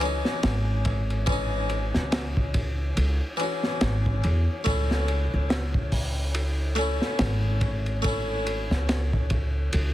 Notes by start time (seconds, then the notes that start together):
Already playing: C#2
0.00 E3 C#4, ride
0.05 D#4
0.25 snare
0.43 G#1, snare, ride
0.85 kick, ride
1.10 ride
1.26 E3 C#4, kick, ride
1.32 D#4
1.69 ride
1.94 C#2, snare
2.12 snare, ride
2.37 kick
2.54 kick, ride
2.97 C#2, ride
3.37 E3 C#4, ride
3.43 F#4
3.63 snare
3.81 G#1, snare, ride
4.06 kick
4.23 E2, ride
4.64 C#2 A3 C#4, kick, ride
4.70 E4
4.91 snare
5.08 ride
5.34 C#2
5.50 snare, ride
5.74 kick
5.92 kick, open hi-hat
6.34 ride
6.75 A3 C#4, ride
6.81 E4
7.02 snare
7.19 G#1, snare, ride
7.61 kick, ride
7.86 ride
8.02 A3 C#4, kick, ride
8.08 E4
8.46 ride
8.71 C#2, snare
8.89 snare, ride
9.13 kick
9.30 kick, ride
9.73 C#2, ride